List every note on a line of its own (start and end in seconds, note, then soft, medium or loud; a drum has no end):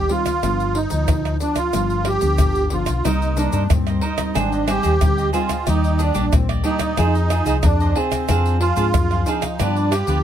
0.00 0.40 D#3 medium
0.00 0.12 G4 loud
0.09 0.29 G3 medium
0.09 0.29 C4 medium
0.09 0.30 D#4 medium
0.09 0.78 F4 loud
0.09 pandeiro medium
0.26 pandeiro medium
0.26 tamborim medium
0.26 shaker medium
0.26 surdo soft
0.43 0.85 G1 loud
0.43 1.06 G2 medium
0.43 0.74 F3 medium
0.43 0.74 B3 medium
0.43 0.74 D4 medium
0.43 pandeiro medium
0.43 tamborim medium
0.43 shaker medium
0.43 surdo medium
0.60 pandeiro soft
0.60 shaker soft
0.75 1.37 D#4 medium
0.75 pandeiro medium
0.90 1.06 D2 medium
0.90 1.35 F3 medium
0.90 1.35 B3 medium
0.90 pandeiro medium
0.90 shaker medium
0.90 surdo soft
1.08 1.36 D2 medium
1.08 pandeiro medium
1.08 tamborim medium
1.08 shaker medium
1.08 surdo loud
1.25 pandeiro soft
1.25 tamborim medium
1.25 shaker soft
1.40 1.68 F3 medium
1.40 1.69 B3 medium
1.40 1.58 D4 medium
1.40 1.69 D4 medium
1.40 pandeiro medium
1.40 shaker medium
1.56 2.08 F4 medium
1.56 pandeiro medium
1.56 tamborim medium
1.56 shaker medium
1.56 surdo soft
1.73 2.16 G1 medium
1.73 2.36 G2 medium
1.73 2.18 F3 medium
1.73 2.18 B3 soft
1.73 2.18 D4 medium
1.73 pandeiro medium
1.73 tamborim medium
1.73 shaker medium
1.73 surdo medium
1.90 pandeiro soft
1.90 shaker soft
2.05 2.75 G4 loud
2.05 pandeiro medium
2.05 tamborim medium
2.21 2.37 D2 loud
2.21 2.66 F3 medium
2.21 2.66 B3 medium
2.21 2.67 D4 medium
2.21 pandeiro medium
2.21 shaker medium
2.21 surdo soft
2.38 2.68 G1 medium
2.38 3.02 D3 medium
2.38 pandeiro medium
2.38 tamborim medium
2.38 shaker medium
2.38 surdo loud
2.55 pandeiro soft
2.55 shaker soft
2.70 2.87 G1 medium
2.70 2.91 F3 medium
2.70 2.92 B3 medium
2.70 2.92 D4 medium
2.70 3.06 F4 medium
2.70 pandeiro medium
2.86 3.03 B1 medium
2.86 pandeiro medium
2.86 tamborim medium
2.86 shaker medium
2.86 surdo soft
3.05 3.47 C2 loud
3.05 3.67 C3 medium
3.05 3.33 G3 medium
3.05 3.33 A#3 medium
3.05 3.36 D#4 medium
3.05 3.39 D#4 medium
3.05 3.33 D#4 medium
3.05 3.36 A#4 medium
3.05 3.37 C5 medium
3.05 3.37 D#5 medium
3.05 pandeiro medium
3.05 tamborim medium
3.05 shaker medium
3.05 surdo medium
3.22 pandeiro soft
3.22 shaker soft
3.37 3.65 G3 medium
3.37 3.65 A#3 medium
3.37 3.71 D4 medium
3.37 3.51 D#4 medium
3.37 3.66 D#4 medium
3.37 3.52 A#4 soft
3.37 3.52 C5 medium
3.37 3.52 D#5 medium
3.37 pandeiro medium
3.37 shaker medium
3.52 3.67 G2 medium
3.52 3.62 D#4 medium
3.52 3.63 A#4 medium
3.52 3.63 C5 medium
3.52 3.63 D#5 medium
3.52 pandeiro medium
3.52 shaker medium
3.52 surdo soft
3.70 3.98 G2 medium
3.70 4.33 G2 soft
3.70 4.02 G3 medium
3.70 4.02 A#3 medium
3.70 4.02 C4 medium
3.70 4.02 D#4 medium
3.70 pandeiro medium
3.70 tamborim medium
3.70 shaker medium
3.70 surdo loud
3.87 4.01 A#4 soft
3.87 4.02 C5 soft
3.87 4.02 D#5 soft
3.87 pandeiro soft
3.87 tamborim medium
3.87 shaker soft
4.01 4.18 D#4 medium
4.01 4.37 D#4 medium
4.01 4.18 A#4 medium
4.01 4.17 C5 medium
4.01 4.16 D#5 medium
4.01 pandeiro medium
4.17 4.63 G3 medium
4.17 4.63 C4 medium
4.17 4.64 D#4 medium
4.17 4.35 A#4 soft
4.17 4.34 C5 soft
4.17 4.34 D#5 soft
4.17 pandeiro medium
4.17 tamborim medium
4.17 shaker medium
4.17 surdo soft
4.35 4.78 G#1 medium
4.35 4.98 G#2 medium
4.35 4.70 D4 medium
4.35 4.50 G#4 medium
4.35 4.51 C5 medium
4.35 4.51 D#5 medium
4.35 4.51 G5 medium
4.35 pandeiro medium
4.35 tamborim medium
4.35 shaker medium
4.35 surdo medium
4.52 4.66 C5 soft
4.52 4.67 D#5 soft
4.52 4.67 G5 soft
4.52 pandeiro soft
4.52 shaker soft
4.67 4.95 G3 medium
4.67 4.96 C4 medium
4.67 4.96 D#4 medium
4.67 5.30 G4 loud
4.67 4.82 G#4 soft
4.67 4.82 C5 medium
4.67 4.82 D#5 medium
4.67 4.83 G5 medium
4.67 pandeiro medium
4.67 tamborim medium
4.67 shaker medium
4.83 4.99 D#2 medium
4.83 4.93 G#4 medium
4.83 4.93 C5 medium
4.83 4.93 D#5 medium
4.83 4.94 G5 medium
4.83 pandeiro medium
4.83 shaker medium
4.83 surdo soft
5.01 5.30 D2 medium
5.01 5.29 G3 medium
5.01 5.29 C4 medium
5.01 5.29 D#4 medium
5.01 pandeiro medium
5.01 tamborim medium
5.01 shaker medium
5.01 surdo loud
5.18 5.33 C5 soft
5.18 5.33 D#5 soft
5.18 5.33 G5 medium
5.18 pandeiro soft
5.18 shaker soft
5.33 5.53 G3 medium
5.33 5.53 C4 medium
5.33 5.53 D#4 medium
5.33 5.68 F4 medium
5.33 5.65 G#4 medium
5.33 5.66 C5 medium
5.33 5.66 D#5 medium
5.33 5.66 G5 medium
5.33 pandeiro medium
5.33 shaker medium
5.49 pandeiro medium
5.49 tamborim medium
5.49 shaker medium
5.49 surdo soft
5.67 6.09 D#2 loud
5.67 6.29 D#3 medium
5.67 6.11 G3 medium
5.67 6.11 A#3 medium
5.67 6.01 D#4 medium
5.67 5.98 G4 medium
5.67 5.99 D5 medium
5.67 5.99 D#5 medium
5.67 pandeiro medium
5.67 tamborim medium
5.67 shaker medium
5.67 surdo medium
5.84 pandeiro soft
5.84 shaker soft
5.99 6.13 D4 medium
5.99 6.34 D4 medium
5.99 6.14 G4 medium
5.99 6.14 D5 medium
5.99 6.14 D#5 medium
5.99 pandeiro medium
5.99 shaker medium
6.14 6.30 A#1 medium
6.14 6.59 G3 medium
6.14 6.59 A#3 medium
6.14 6.24 D4 medium
6.14 6.60 D4 medium
6.14 6.25 G4 medium
6.14 6.25 D5 medium
6.14 6.25 D#5 medium
6.14 pandeiro medium
6.14 shaker medium
6.14 surdo soft
6.32 6.60 A#1 medium
6.32 6.95 A#2 medium
6.32 6.48 C4 medium
6.32 pandeiro medium
6.32 tamborim medium
6.32 shaker medium
6.32 surdo loud
6.49 6.63 G4 soft
6.49 6.64 D5 soft
6.49 6.64 D#5 soft
6.49 pandeiro soft
6.49 tamborim medium
6.49 shaker soft
6.64 6.92 G3 medium
6.64 6.92 A#3 medium
6.64 6.80 D4 medium
6.64 6.92 D4 medium
6.64 7.66 D#4 loud
6.64 6.80 G4 medium
6.64 6.78 D5 medium
6.64 6.80 D#5 medium
6.64 pandeiro medium
6.79 6.97 G4 soft
6.79 6.96 D5 soft
6.79 6.96 D#5 soft
6.79 pandeiro medium
6.79 tamborim medium
6.79 shaker medium
6.79 surdo soft
6.97 7.40 F2 medium
6.97 7.60 F3 medium
6.97 7.28 C4 medium
6.97 7.29 D#4 medium
6.97 7.13 F4 medium
6.97 7.29 G#4 medium
6.97 7.13 G#4 medium
6.97 7.13 C5 medium
6.97 7.13 D#5 medium
6.97 pandeiro medium
6.97 tamborim medium
6.97 shaker medium
6.97 surdo medium
7.15 7.30 G#4 soft
7.15 7.30 C5 soft
7.15 7.30 D#5 soft
7.15 pandeiro soft
7.15 shaker soft
7.30 7.45 F4 medium
7.30 7.45 G#4 soft
7.30 7.46 C5 medium
7.30 7.46 D#5 medium
7.30 pandeiro medium
7.30 tamborim medium
7.30 shaker medium
7.45 7.60 C2 medium
7.45 7.90 C4 medium
7.45 7.90 D#4 medium
7.45 7.56 F4 medium
7.45 7.90 G#4 medium
7.45 7.56 G#4 medium
7.45 7.56 C5 medium
7.45 7.56 D#5 medium
7.45 pandeiro medium
7.45 shaker medium
7.45 surdo soft
7.63 7.91 F2 medium
7.63 8.25 C3 medium
7.63 7.97 D4 medium
7.63 pandeiro medium
7.63 tamborim medium
7.63 shaker medium
7.63 surdo medium
7.80 7.95 G#4 soft
7.80 7.95 C5 medium
7.80 7.95 D#5 medium
7.80 pandeiro soft
7.80 shaker soft
7.95 8.23 C4 medium
7.95 8.57 C4 medium
7.95 8.23 D#4 medium
7.95 8.27 F4 medium
7.95 8.23 G#4 medium
7.95 8.27 G#4 medium
7.95 8.28 C5 medium
7.95 8.28 D#5 medium
7.95 pandeiro medium
8.12 pandeiro medium
8.12 tamborim medium
8.12 shaker medium
8.12 surdo soft
8.29 8.71 F2 loud
8.29 8.91 F3 medium
8.29 8.59 C4 medium
8.29 8.59 D4 medium
8.29 8.60 D4 medium
8.29 8.61 G#4 medium
8.29 8.60 G#4 medium
8.29 8.61 C5 medium
8.29 8.61 F5 medium
8.29 pandeiro medium
8.29 tamborim medium
8.29 shaker medium
8.29 surdo medium
8.46 pandeiro soft
8.46 shaker soft
8.60 8.75 D4 soft
8.60 9.28 F4 loud
8.60 8.75 G#4 soft
8.60 8.76 C5 medium
8.60 8.76 F5 medium
8.60 pandeiro medium
8.76 8.91 G#2 medium
8.76 9.21 C4 medium
8.76 8.86 D4 medium
8.76 9.21 D4 medium
8.76 8.86 G#4 medium
8.76 9.21 G#4 medium
8.76 8.86 C5 medium
8.76 8.87 F5 medium
8.76 pandeiro medium
8.76 shaker medium
8.76 surdo soft
8.94 9.22 F#2 medium
8.94 9.57 F3 medium
8.94 pandeiro medium
8.94 tamborim loud
8.94 shaker medium
8.94 surdo loud
9.11 9.26 G#4 soft
9.11 9.26 C5 soft
9.11 9.26 F5 soft
9.11 pandeiro soft
9.11 tamborim medium
9.11 shaker soft
9.26 9.46 C4 medium
9.26 9.42 D4 medium
9.26 9.46 D4 medium
9.26 9.60 D#4 medium
9.26 9.46 G#4 medium
9.26 9.42 G#4 medium
9.26 9.42 C5 medium
9.26 9.41 F5 medium
9.26 pandeiro medium
9.26 shaker medium
9.26 surdo soft
9.42 9.59 G#4 soft
9.42 9.59 C5 soft
9.42 9.58 F5 medium
9.42 pandeiro medium
9.42 tamborim medium
9.42 shaker medium
9.42 surdo soft
9.59 10.01 G2 medium
9.59 10.22 G2 medium
9.59 9.91 F3 medium
9.59 9.91 B3 medium
9.59 9.93 D4 medium
9.59 9.91 D4 medium
9.59 9.75 F4 medium
9.59 9.75 G4 medium
9.59 9.76 B4 medium
9.59 9.76 D5 medium
9.59 pandeiro medium
9.59 tamborim medium
9.59 shaker medium
9.59 surdo medium
9.76 9.92 G4 soft
9.76 9.92 B4 soft
9.76 9.91 D5 soft
9.76 pandeiro soft
9.76 shaker soft
9.91 10.07 F4 soft
9.91 10.23 G4 loud
9.91 10.07 G4 soft
9.91 10.08 B4 medium
9.91 10.08 D5 medium
9.91 pandeiro medium
9.91 tamborim medium
9.91 shaker medium
10.07 10.22 D2 medium
10.07 10.23 F3 medium
10.07 10.23 B3 medium
10.07 10.23 D4 medium
10.07 10.17 F4 medium
10.07 10.17 G4 medium
10.07 10.18 B4 medium
10.07 10.18 D5 medium
10.07 pandeiro medium
10.07 shaker medium
10.07 surdo soft